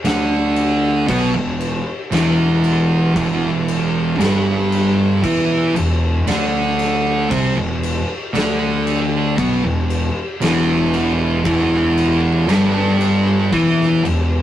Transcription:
0.04 fingered electric bass D2, distorted electric guitar D3 D4, snare, crash
0.56 crash
1.07 fingered electric bass B1, distorted electric guitar B2 B3, kick, crash
1.34 fingered electric bass E1, distorted electric guitar E2
1.61 crash
2.12 fingered electric bass E1, distorted electric guitar E2 E3, snare, crash
2.64 crash
3.15 fingered electric bass E1, distorted electric guitar E2 E3, kick, crash
3.68 crash
4.19 fingered electric bass G1, distorted electric guitar G2 G3, snare, crash
4.72 crash
5.23 fingered electric bass E2, distorted electric guitar E3 E4, kick, crash
5.75 fingered electric bass E1, distorted electric guitar E2, crash
6.27 fingered electric bass D2, distorted electric guitar D3 D4, snare, crash
6.79 snare, crash
7.31 fingered electric bass C2, distorted electric guitar C3 C4, kick, crash
7.57 fingered electric bass E1, distorted electric guitar E2
7.83 crash
8.34 fingered electric bass D2, distorted electric guitar D3 D4, snare, crash
8.87 crash
9.38 fingered electric bass B1, distorted electric guitar B2 B3, kick, crash
9.64 fingered electric bass E1, distorted electric guitar E2
9.90 crash
10.41 fingered electric bass E1, distorted electric guitar E2 E3, snare, crash
10.94 crash
11.44 fingered electric bass E1, distorted electric guitar E2 E3, kick, crash
11.98 crash
12.49 fingered electric bass G1, distorted electric guitar G2 G3, snare, crash
13.01 crash
13.51 fingered electric bass E2, distorted electric guitar E3 E4, kick, crash
13.81 snare
14.04 fingered electric bass E1, distorted electric guitar E2, crash

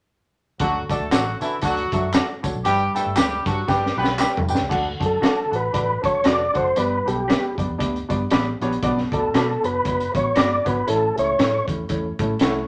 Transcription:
0.60 fingered electric bass D2, upright piano D3 D4 F#4 A4 F#5, horn section F#3 F#4, kick, closed hi-hat
0.89 horn section A3 A4, upright piano D4 F#4 A4 D5, kick, closed hi-hat, tambourine
1.00 fingered electric bass D2
1.11 fingered electric bass A1, horn section F#3 F#4, upright piano D4 F#4 A4 F#5, clean electric guitar F#4 A4 D5, snare, clap, closed hi-hat, tambourine
1.41 fingered electric bass D3, horn section E3 E4, upright piano D4 F#4 A4 A5, closed hi-hat, tambourine
1.62 fingered electric bass D2, horn section F#3 F#4, upright piano D4 F#4 A4 F#5, kick, closed hi-hat, tambourine
1.77 closed hi-hat
1.92 fingered electric bass F#2, upright piano D4 F#4 A4 E5, kick, closed hi-hat, tambourine
2.13 upright piano D4 F#4 A4 F#5, clean electric guitar F#4 A4 D5, snare, clap, closed hi-hat, tambourine
2.43 fingered electric bass D2, upright piano D4 F#4 A4 C#5, kick, closed hi-hat, tambourine
2.55 fingered electric bass B1
2.65 fingered electric bass G1, upright piano G2 D4 G4 B4 G5, horn section G3 G4, closed hi-hat, tambourine
2.95 horn section A3 A4, upright piano D4 G4 B4 G5, closed hi-hat, tambourine
3.06 fingered electric bass G1
3.16 fingered electric bass D2, horn section G3 G4, upright piano D4 G4 B4 G5, clean electric guitar G4 B4 D5, snare, clap, closed hi-hat, tambourine
3.46 fingered electric bass G2, horn section F#3 F#4, upright piano D4 G4 B4 A5, kick, closed hi-hat, tambourine
3.68 fingered electric bass G1, horn section G3 G4, upright piano D4 G4 B4 G5, kick, snare, tambourine
3.86 snare
3.97 fingered electric bass B1, horn section B3 B4, upright piano D4 G4 B4 G5
4.04 snare
4.18 upright piano D4 G4 B4 G5, clean electric guitar G4 B4 D5, snare, clap, tambourine
4.37 floor tom
4.48 fingered electric bass G1, upright piano D4 G4 B4 G5, tambourine
4.55 snare
4.60 fingered electric bass C#2
4.69 fingered electric bass D2, upright piano D3 D4 F#4 A4 F#5, kick, crash
5.00 fingered electric bass F#2, upright piano D4 F#4 A4 A5, kick, closed hi-hat
5.06 tonewheel organ A4
5.21 fingered electric bass D3, upright piano D4 F#4 A4 F#5, clean electric guitar F#4 A4 D5, snare, closed hi-hat
5.51 fingered electric bass A1, upright piano D4 F#4 A4 F#5, closed hi-hat
5.56 tonewheel organ B4
5.72 fingered electric bass A1, upright piano D4 F#4 A4 D5, kick, closed hi-hat
6.02 fingered electric bass D3, upright piano D4 F#4 A4 A5, tonewheel organ C#5, kick, closed hi-hat
6.24 fingered electric bass F1, upright piano D4 F#4 A4 B4, clean electric guitar F#4 A4 D5, snare, closed hi-hat
6.28 tonewheel organ D5
6.54 fingered electric bass F#1, upright piano D4 F#4 A4 F#5, tonewheel organ C5, kick, closed hi-hat
6.76 fingered electric bass G1, upright piano G2 B3 D4 G4 D5, tonewheel organ B4, closed hi-hat
7.06 fingered electric bass B1, upright piano B3 D4 G4 A4, tonewheel organ G4, closed hi-hat
7.28 upright piano B3 D4 G4 B4, clean electric guitar G4 B4 D5, snare, closed hi-hat
7.58 fingered electric bass F#2, upright piano B3 D4 G4 D5, kick, closed hi-hat
7.70 fingered electric bass E2
7.78 fingered electric bass D2, upright piano B3 D4 G4 D5, kick, closed hi-hat
7.96 closed hi-hat
8.09 fingered electric bass G2, upright piano B3 D4 G4 D5, kick, closed hi-hat
8.30 fingered electric bass A1, upright piano B3 D4 G4 D5, clean electric guitar G4 B4 D5, snare, closed hi-hat
8.61 fingered electric bass A#1, upright piano B3 D4 G4 C#5, closed hi-hat
8.73 closed hi-hat
8.83 fingered electric bass B1, upright piano B2 B3 D4 F#4 D5, kick, closed hi-hat
8.98 snare
9.12 fingered electric bass D2, upright piano B3 D4 F#4 D5, tonewheel organ A4, kick, closed hi-hat
9.33 fingered electric bass B2, upright piano B3 D4 F#4 A4, clean electric guitar F#4 B4 D5, snare, closed hi-hat
9.62 fingered electric bass F#1, upright piano B3 D4 F#4 C#5, tonewheel organ B4, closed hi-hat
9.83 fingered electric bass F#1, upright piano B3 D4 F#4 C#5, kick, closed hi-hat
10.00 closed hi-hat
10.13 fingered electric bass A1, upright piano B3 D4 F#4 C#5, tonewheel organ C#5, kick, closed hi-hat
10.36 fingered electric bass G1, upright piano B3 D4 F#4 D5, clean electric guitar F#4 B4 D5, tonewheel organ D5, snare, closed hi-hat
10.65 fingered electric bass G#1, upright piano B3 D4 F#4 C#5, tonewheel organ B4, kick, closed hi-hat
10.87 fingered electric bass A1, upright piano A2 A3 C#4 E4 C#5, tonewheel organ A4, closed hi-hat
11.17 fingered electric bass C#2, upright piano A3 C#4 E4 E5, tonewheel organ C#5, closed hi-hat
11.39 fingered electric bass A2, upright piano A3 C#4 E4 C#5, clean electric guitar E4 A4 C#5, snare, closed hi-hat
11.68 fingered electric bass E2, upright piano A3 C#4 E4 C#5, kick, closed hi-hat
11.89 fingered electric bass E2, upright piano A3 C#4 E4 C#5, kick, closed hi-hat
12.19 fingered electric bass A2, upright piano A3 C#4 E4 C#5 A5, kick, closed hi-hat
12.39 fingered electric bass C2, upright piano A3 C#4 E4 C#5 F#5, clean electric guitar E4 A4 C#5, snare, closed hi-hat

